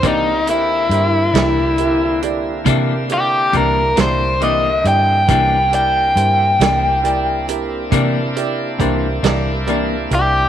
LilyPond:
<<
  \new Staff \with { instrumentName = "Overdriven electric guitar" } { \time 12/8 \key c \mixolydian \tempo 4. = 46 ees'8 e'2 r4 g'8 bes'8 c''8 ees''8 g''8~ | g''8 g''2 r2. g'8 | }
  \new Staff \with { instrumentName = "Grand piano" } { \time 12/8 \key c \mixolydian <c' g' bes' d''>8 <e' g' bes' e''>8 <e' g' bes' c''>8 <e' g' bes' e''>8 <e' g' bes' e''>8 <e' g' bes' d''>8 <e' g' bes' e''>8 <e' g' bes' d''>8 <e' g' bes' d''>8 <e' g' bes' d''>8 <e' g' bes' d'''>8 <e' g' bes' d''>8 | <e' g' bes' e''>8 <e' g' bes' d''>8 <e' g' bes' c''>8 <e' g' bes' d''>8 <e' g' bes' d''>8 <e' g' bes' e''>8 <e' g' bes' d''>8 <e' g' bes' d''>8 <e' g' bes' c''>8 <e' g' bes' d''>8 <e' g' bes' d''>8 <e' g' bes' d''>8 | }
  \new Staff \with { instrumentName = "Tonewheel organ" } { \time 12/8 \key c \mixolydian <des bes ees' f'>8 <d bes c' e'>1~ <d bes c' e'>4. | <f b des' d'>8 <bes c' d' e'>1~ <bes c' d' e'>4. | }
  \new Staff \with { instrumentName = "Clean electric guitar" } { \time 12/8 \key c \mixolydian <c e bes d'>8 r4 <e bes d'>8 r4 <c e bes d'>8 r8 <c e bes d'>8 <e bes d'>8 <c e bes d'>8 r8 | <c e bes d'>8 r4 <e bes d'>8 r4 <c e bes d'>8 r8 <c e bes d'>8 <e bes d'>8 <c e bes d'>8 r8 | }
  \new Staff \with { instrumentName = "Fingered electric bass" } { \clef bass \time 12/8 \key c \mixolydian c,4 g,8 c,4. c4 c,8 c,4 g,8 | c,4 g,8 c,4. c4 c,8 c,4 c,8 | }
  \new DrumStaff \with { instrumentName = "Drums" } \drummode { \time 12/8 <hh bd>8 hh8 hh8 <hh sn>8 hh8 hh8 <hh bd>8 hh8 <hh bd>8 <hh sn>8 hh8 hh8 | <hh bd>8 hh8 hh8 <hh sn>8 hh8 hh8 <hh bd>8 hh8 <hh bd>8 <hh sn>8 hh8 hh8 | }
>>